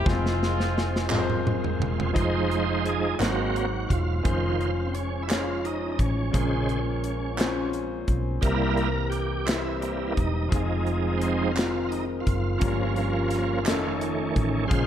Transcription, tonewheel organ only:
0.06 2.11 G#3 medium
0.06 2.11 C4 medium
0.06 2.11 F4 medium
2.13 3.15 F3 soft
2.13 3.15 G#3 soft
2.13 3.15 D#4 medium
2.13 2.87 C5 loud
2.86 3.18 G#4 medium
3.19 3.66 F#3 soft
3.19 3.66 A#3 soft
3.19 3.67 C4 medium
3.19 3.93 F#4 medium
3.89 4.90 F4 medium
4.23 4.70 D#3 soft
4.23 4.71 F3 soft
4.23 4.71 C5 medium
4.87 4.94 C4 medium
4.95 5.23 C#4 medium
5.23 5.29 E4 medium
5.31 5.66 F4 medium
5.65 5.91 D#4 medium
5.92 5.99 D#4 soft
6.00 7.70 C#4 medium
6.33 6.80 C#3 medium
6.33 6.80 G#3 medium
6.33 6.80 C5 medium
8.41 8.88 G3 medium
8.41 8.89 A#3 medium
8.41 8.90 E4 medium
8.41 9.08 A#4 loud
9.10 9.47 G4 medium
9.46 9.81 E4 medium
9.81 10.13 G3 soft
9.81 10.14 A#3 soft
9.81 10.13 E4 soft
10.14 10.50 D#4 medium
10.49 11.51 F3 medium
10.49 11.52 G#3 soft
10.49 11.52 D#4 medium
11.18 11.52 C4 medium
11.51 11.90 F4 medium
11.89 12.05 D#4 medium
12.20 13.94 F4 medium
12.58 13.60 F3 medium
12.58 13.60 A#3 soft
12.58 13.60 C#4 medium
13.64 14.65 D#3 medium
13.64 14.66 A3 medium
13.64 14.67 C#4 medium
14.67 14.87 C#3 medium
14.67 14.87 G#3 medium
14.67 14.87 C5 medium
14.67 14.87 F5 loud

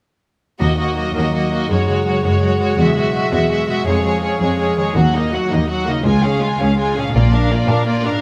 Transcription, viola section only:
0.60 0.77 A#3 soft
0.78 0.95 A#3 soft
0.96 1.13 A#3 soft
1.14 1.33 A#3 soft
1.34 1.51 A#3 soft
1.52 1.69 A#3 soft
1.70 1.88 G#3 soft
1.89 2.05 G#3 soft
2.06 2.24 G#3 soft
2.25 2.41 G#3 soft
2.42 2.59 G#3 soft
2.60 2.78 G#3 soft
2.79 2.95 G#3 soft
2.96 3.13 G#3 soft
3.14 3.31 G#3 soft
3.32 3.49 G#3 soft
3.50 3.67 G#3 soft
3.68 3.85 G#3 soft
3.87 4.03 G#3 soft
4.04 4.22 G#3 soft
4.23 4.40 G#3 soft
4.42 4.58 G#3 soft
4.59 4.77 G#3 soft
4.78 4.96 G#3 soft
4.97 5.14 F#3 soft
5.15 5.33 A#3 soft
5.33 5.51 F#3 soft
5.51 5.69 A#3 soft
5.70 5.86 F#3 soft
5.86 6.05 A#3 soft
6.04 6.22 G#3 soft
6.24 6.42 C#4 soft
6.42 6.60 G#3 soft
6.60 6.78 C#4 soft
6.77 6.94 G#3 soft
6.97 7.14 C#4 soft
7.13 7.31 A#3 soft
7.32 7.50 D4 soft
7.51 7.69 A#3 soft
7.69 7.87 D4 soft
7.86 8.03 A#3 soft
8.04 8.21 D4 soft

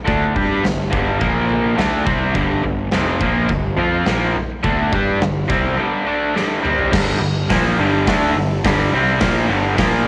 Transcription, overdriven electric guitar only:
0.05 0.33 D3 medium
0.05 0.34 A3 medium
0.05 0.34 D4 loud
0.34 0.62 G3 medium
0.34 0.63 D4 loud
0.34 0.63 G4 loud
0.62 0.86 G2 medium
0.62 0.86 D3 medium
0.90 1.19 G2 medium
0.90 1.18 D3 medium
0.90 1.19 G3 loud
1.18 1.76 A#2 medium
1.18 1.76 F3 medium
1.18 1.77 A#3 loud
1.76 2.04 D3 medium
1.76 2.05 A3 loud
1.76 2.06 D4 loud
2.05 2.33 C3 medium
2.05 2.34 G3 medium
2.05 2.34 C4 loud
2.34 2.62 G2 medium
2.34 2.63 D3 loud
2.34 2.63 G3 loud
2.64 2.86 G2 medium
2.64 2.86 D3 medium
2.92 3.20 F2 loud
2.92 3.20 C3 medium
2.92 3.20 F3 loud
3.21 3.49 A#2 medium
3.21 3.49 F3 medium
3.21 3.49 A#3 medium
3.49 3.72 G2 medium
3.49 3.72 D3 medium
3.76 4.05 F3 medium
3.76 4.06 C4 medium
3.76 4.06 F4 loud
4.06 4.34 A#2 loud
4.06 4.35 F3 loud
4.06 4.35 A#3 loud
4.35 muted overdriven electric guitar stroke medium
4.63 4.91 D3 medium
4.63 4.91 A3 loud
4.63 4.92 D4 loud
4.93 5.20 G3 medium
4.93 5.21 D4 loud
4.93 5.21 G4 loud
5.20 5.43 G2 medium
5.20 5.43 D3 medium
5.48 5.76 C3 medium
5.48 5.76 G3 medium
5.48 5.78 C4 medium
5.76 6.05 G2 medium
5.76 6.03 D3 loud
5.76 6.05 G3 loud
6.05 6.33 D3 medium
6.05 6.34 A3 medium
6.05 6.34 D4 loud
6.34 6.62 G2 loud
6.34 6.61 D3 loud
6.34 6.61 G3 loud
6.61 6.90 C3 medium
6.61 6.91 G3 medium
6.61 6.91 C4 medium
6.91 7.19 G2 loud
6.91 7.19 D3 loud
6.91 7.20 G3 loud
7.20 7.43 G2 medium
7.20 7.43 D3 medium
7.50 7.77 A#2 medium
7.50 7.78 F3 loud
7.50 7.78 A#3 medium
7.78 8.06 G2 medium
7.78 8.06 D3 loud
7.78 8.07 G3 loud
8.08 8.35 D3 medium
8.08 8.35 A3 loud
8.08 8.35 D4 loud
8.37 8.59 G2 medium
8.37 8.59 D3 medium
8.64 8.91 G2 loud
8.64 8.92 D3 loud
8.64 8.92 G3 loud
8.93 9.20 C3 medium
8.93 9.21 G3 loud
8.93 9.21 C4 loud
9.20 9.48 A#2 loud
9.20 9.48 F3 loud
9.20 9.49 A#3 loud
9.48 9.75 G2 medium
9.48 9.75 D3 loud
9.48 9.76 G3 loud
9.76 10.04 A#2 medium
9.76 10.04 F3 medium
9.76 10.05 A#3 loud

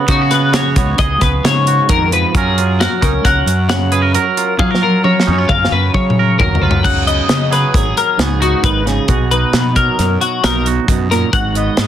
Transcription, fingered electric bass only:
0.09 0.78 C#3 medium
0.77 0.94 C#2 medium
0.99 1.16 C#2 medium
1.22 1.39 C#2 medium
1.44 1.79 C#3 medium
1.90 2.24 F2 medium
2.35 2.86 F#2 loud
3.03 3.20 C#2 medium
3.25 3.42 C#2 medium
3.46 4.16 F#2 medium
4.60 5.29 F#3 loud
5.28 5.45 F#2 medium
5.49 5.67 F#2 medium
5.72 5.89 F#2 medium
5.94 6.29 F#3 medium
6.40 6.60 D#2 medium
6.62 6.82 C#2 medium
6.85 7.19 C#2 medium
7.29 7.64 C#3 medium
7.74 7.92 G#1 medium
8.19 8.53 C#2 medium
8.63 8.98 G#1 medium
9.09 9.43 B1 medium
9.54 9.88 B2 medium
9.99 10.16 F#2 medium
10.44 10.78 B1 medium
10.89 11.23 F#2 medium
11.34 11.68 G#1 medium
11.78 11.87 G#2 medium

